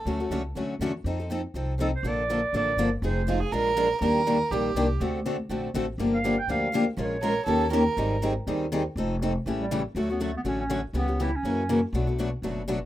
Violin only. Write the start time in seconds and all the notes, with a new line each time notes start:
Already playing: A4
3.29 F4
3.40 G#4
3.52 A#4
4.01 A#4
4.51 G4
7.22 A#4
7.47 A4
7.72 A#4